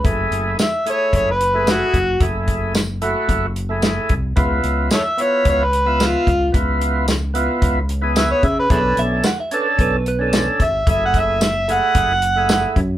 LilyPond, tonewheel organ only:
\new Staff \with { instrumentName = "Tonewheel organ" } { \time 4/4 \key fis \minor \tempo 4 = 111 <a e' gis'>4 r8 <a e' gis'>8. r8 <a e' gis'>8. r8 | <a e' gis'>4 r8 <a e' fis'>8. r8 <a e' gis'>8. r8 | <b e' eis'>4 r8 <b e' eis'>8. r8 <b eis' e''>8. r8 | <b e' eis'>4 r8 <b e' eis'>8. r8 <b e' gis'>8. r8 |
<cis' d' a'>4 r8 <cis' d' a'>8. r8 <cis' d' a'>8. r8 | <a e' gis'>4 r8 <a e' gis'>8. r8 <a e' gis'>8. r8 | }